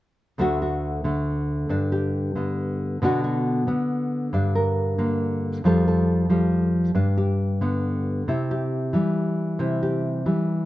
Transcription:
0.38 D2 D3 A3 D4 F#4
0.62 F#4
1.04 D3 A3
1.69 G2 D4
1.92 G4
2.35 D3 B3
3.02 B2 D3 B3 D4 F#4
3.24 F#4
3.67 D3 B3
4.33 G2 D4
4.55 A#4
4.98 D3 A#3
5.64 F2 F3 G3 A4
5.88 A4
6.29 F3 G3
6.95 G2 D4
7.17 G4
7.61 D3 B3
8.28 C3 E4
8.51 G4
8.93 E3 G3
9.59 C3 E4
9.83 G4
10.26 E3 G3

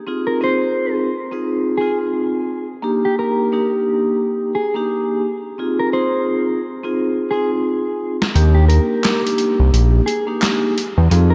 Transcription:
0.07 C4 D#4 F4 G#4
0.27 A#4
0.41 C4 D#4 F4 G#4 C5
1.31 C4 D#4 F4 G#4
1.78 C4 D#4 F4 G#4
1.82 G#4
2.82 A#3 D4 D#4 G4
3.05 G4
3.19 A#4
3.52 A#3 D4 D#4 G4
4.55 G#4
4.74 A#3 D4 D#4 G4
5.58 C4 D#4 F4 G#4
5.79 A#4
5.93 C4 D#4 F4 G#4 C5
6.83 C4 D#4 F4 G#4
7.31 C4 D#4 F4 G#4
8.22 snare
8.34 D#2 A#3 D4 D#4 G4, closed hi-hat
8.55 G4
8.68 A#4, closed hi-hat
9.04 A#3 D4 D#4 G4, snare, clap, closed hi-hat
9.27 closed hi-hat
9.38 closed hi-hat
9.60 C2
9.73 A#1, closed hi-hat
10.06 G#4, closed hi-hat
10.27 A#3 D4 D#4 G4
10.42 snare, clap, closed hi-hat
10.78 closed hi-hat
10.98 E2
11.10 F2 C4 D#4 F4 G#4, closed hi-hat
11.30 A#4

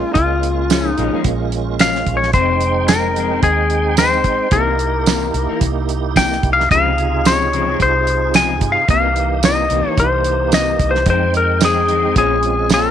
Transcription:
Already playing: G#3 A#3 C#4 F4
0.14 C#2 F4, kick, closed hi-hat
0.43 closed hi-hat
0.70 A#2 F3 G#3 C#4, snare, closed hi-hat, tambourine
0.88 D#4
0.98 A#1 A#2 F3 G#3 C#4, closed hi-hat
1.13 F3 G#3 C#4
1.24 A#1, kick, closed hi-hat
1.52 closed hi-hat
1.79 A#2 F3 G#3 C#4 F5, snare, closed hi-hat, tambourine
1.95 snare
2.06 A#1, kick, closed hi-hat
2.17 C#5
2.23 snare
2.33 F1 F2 D#3 G#3 C4 D#4 C5 G5, kick, closed hi-hat
2.61 closed hi-hat
2.88 F2 D#3 G#3 C4 A#4, snare, closed hi-hat, tambourine
3.16 F2 D#3 G#3 C4, closed hi-hat
3.31 D#3 G#3 C4
3.43 D#2 G#4, kick, closed hi-hat
3.70 closed hi-hat
3.97 F2 D#3 G#3 C4 C5, snare, closed hi-hat, tambourine
4.24 A#1, kick, closed hi-hat
4.51 C2 C3 E3 A#3 D#4 E4 G4 A#4, kick, closed hi-hat
4.79 closed hi-hat
5.06 C3 E3 A#3 D#4, snare, closed hi-hat, tambourine
5.34 C2, closed hi-hat
5.49 E3 A#3 D#4
5.61 C2, kick, closed hi-hat
5.89 closed hi-hat
6.16 C3 E3 A#3 D#4 G5, kick, snare, closed hi-hat, tambourine
6.32 snare
6.43 C2, kick, closed hi-hat
6.53 F5
6.60 snare
6.70 C#2 C3 C#3 F3 G#3 C4 D#4 F4 G#4 F5, kick, closed hi-hat
6.98 closed hi-hat
7.25 C#3 F3 G#3 C4 C#5, snare, closed hi-hat, tambourine
7.53 C#3 F3 G#3 C4, closed hi-hat
7.68 F3 G#3 C4
7.79 C2 C5, kick, closed hi-hat
8.07 closed hi-hat
8.34 C#3 F3 G#3 C4 G#5, snare, closed hi-hat, tambourine
8.61 G2, kick, closed hi-hat
8.72 F5
8.88 C2 C3 E3 A#3 D#4 G4 F5, kick, closed hi-hat
9.16 closed hi-hat
9.43 C3 E3 A#3 D#4 D#5, snare, closed hi-hat, tambourine
9.70 C2 C3 E3 A#3 D#4, closed hi-hat
9.85 E3 A#3 D#4 C#5
9.97 C2 C5, kick, closed hi-hat
10.24 closed hi-hat
10.52 C3 E3 A#3 D#4 D#5, snare, closed hi-hat, tambourine
10.79 C2, kick, closed hi-hat
10.91 C5
10.95 snare
11.06 F2 D#3 G#3 C4 D#4 G5, kick, closed hi-hat
11.10 C5
11.34 A#4, closed hi-hat
11.61 F2 D#3 G#3 C4, snare, closed hi-hat, tambourine
11.65 G#4
11.89 F2 D#3 G#3 C4, closed hi-hat
12.04 D#3 G#3 C4
12.16 A#1 A#2 G#3 C4 C#4 F4 G#4, kick, closed hi-hat
12.43 closed hi-hat
12.70 A#2 G#3 C#4 F4, snare, closed hi-hat, tambourine
12.74 A#4

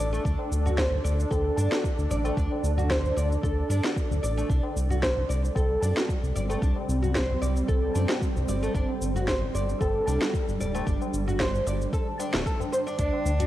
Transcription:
Already playing: D4 A4 D5
0.00 A1 D5
0.13 A3, cabasa
0.25 D2 D4, kick, cabasa
0.39 tabla na
0.51 D2, tabla tin, cabasa
0.66 F#4, tabla ge, cabasa
0.78 C5, kick, snare, cabasa
0.92 tabla ge
1.04 D2 D5, cabasa
1.20 cabasa
1.31 D2 A4, kick, tabla na, cabasa
1.57 G2 D4, cabasa
1.72 F#4, snare, tabla na, cabasa
1.84 kick, cabasa
1.98 D2, cabasa
2.10 A1 D5, tabla ge, cabasa
2.24 A3, tabla na, tabla tin, cabasa
2.37 D2 D4, kick, cabasa
2.52 tabla na
2.63 D2, tabla tin, cabasa
2.78 F#4, tabla ge, cabasa
2.90 C5, kick, snare, cabasa
3.04 tabla ge, cabasa
3.17 D2 D5, cabasa
3.32 cabasa
3.43 D2 A4, kick, cabasa
3.70 G2 D4, cabasa
3.84 F#4, snare, tabla tin, cabasa
3.96 kick, cabasa
4.11 D2, tabla ge, cabasa
4.23 A1 D5, cabasa
4.37 A3, cabasa
4.49 C2 G3 C4 D4, kick, cabasa
4.63 tabla na
4.76 C2, tabla tin, cabasa
4.89 F#4, tabla ge, cabasa
5.02 C5, kick, snare, cabasa
5.16 tabla ge
5.29 C2 D5, cabasa
5.45 cabasa
5.55 C2 A4, kick, tabla na, cabasa
5.82 F#2 D4, cabasa
5.97 F#4, snare, tabla na, cabasa
6.09 kick, cabasa
6.23 C2, cabasa
6.35 G1 D5, tabla ge, cabasa
6.49 A3, tabla na, tabla tin, cabasa
6.62 C2 D4 C5, kick, cabasa
6.76 tabla na
6.88 C2, tabla tin, cabasa
7.03 F#4, tabla ge, cabasa
7.15 C5, kick, snare, cabasa
7.30 tabla ge
7.42 C2 D5, cabasa
7.56 cabasa
7.68 C2 A4, kick, cabasa
7.95 F#2 D4, cabasa
8.09 F#4, snare, tabla tin, cabasa
8.21 kick, cabasa
8.36 C2, tabla ge, cabasa
8.48 G1 D5, cabasa
8.62 A3, cabasa
8.75 G1 G3 D4 A4, kick, cabasa
8.89 tabla na
9.01 G1, tabla tin, cabasa
9.15 F#4, tabla ge, cabasa
9.28 C5, kick, snare, cabasa
9.41 tabla ge
9.54 G1 D5, cabasa
9.69 cabasa
9.80 G1 A4, kick, tabla na, cabasa
10.07 C2 D4, cabasa
10.21 F#4, snare, tabla na, cabasa
10.34 kick, cabasa
10.48 G1, cabasa
10.60 D1 D5, tabla ge, cabasa
10.74 A3, tabla na, tabla tin, cabasa
10.87 G1 D4, kick, cabasa
11.02 tabla na, cabasa
11.13 G1, tabla tin, cabasa
11.28 F#4, tabla ge, cabasa
11.40 C5, kick, snare, cabasa
11.55 tabla ge, cabasa
11.66 G1 D5, cabasa
11.81 cabasa
11.93 A4, kick, cabasa
12.19 D4, tabla na, cabasa
12.33 D1 A3, snare, tabla tin, cabasa
12.46 A4, kick, cabasa
12.60 tabla na, tabla ge, cabasa
12.73 C5, cabasa
12.87 D4, cabasa
12.99 D2 D4 A4 D5, kick, closed hi-hat, cabasa
13.13 tabla na
13.25 D2, tabla tin, cabasa
13.39 F#4, closed hi-hat, tabla ge, cabasa

